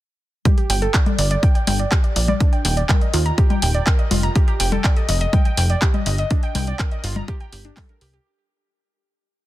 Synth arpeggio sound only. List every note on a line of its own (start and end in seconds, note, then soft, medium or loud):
0.45 0.49 G4 medium
0.58 0.64 G4 medium
0.70 0.76 G5 loud
0.82 0.88 A4 loud
1.06 1.13 D5 medium
1.18 1.28 D5 medium
1.31 1.34 D5 loud
1.43 1.52 G5 loud
1.55 1.64 G5 medium
1.67 1.73 G5 loud
1.79 1.86 D5 medium
1.92 1.95 G4 medium
2.04 2.10 D5 medium
2.16 2.25 D5 medium
2.28 2.32 D5 loud
2.40 2.47 D4 medium
2.53 2.62 G5 medium
2.65 2.71 G5 loud
2.77 2.83 D5 medium
2.89 2.93 A#4 medium
3.01 3.08 D#5 medium
3.13 3.17 F4 medium
3.26 3.32 A#5 medium
3.38 3.44 G4 loud
3.50 3.60 G5 medium
3.62 3.69 G5 loud
3.74 3.81 D5 medium
3.87 3.90 A#4 medium
3.99 4.05 D#5 medium
4.11 4.15 F4 medium
4.23 4.33 A#5 medium
4.35 4.39 G4 medium
4.48 4.54 G4 medium
4.60 4.66 G5 loud
4.72 4.78 A4 loud
4.84 4.88 D5 medium
4.97 5.03 D#5 medium
5.09 5.18 D#5 medium
5.21 5.25 D#5 loud
5.33 5.43 G5 loud
5.45 5.55 G5 medium
5.58 5.64 G5 loud
5.70 5.76 D5 medium
5.82 5.86 G4 medium
5.94 6.00 D#5 medium
6.07 6.16 D#5 medium
6.19 6.22 D#5 loud
6.31 6.37 D4 medium
6.43 6.52 G5 medium
6.55 6.61 G5 loud
6.68 6.74 D5 medium
6.80 6.83 A#4 medium
6.92 6.98 D#5 medium
7.04 7.08 F4 medium
7.16 7.22 A#5 medium
7.28 7.34 G4 loud
7.41 7.50 G5 medium
7.53 7.59 G4 medium
7.65 7.71 D4 medium
7.77 7.83 A4 medium
7.89 7.95 A#4 medium
8.01 8.08 G4 loud
8.14 8.20 G4 loud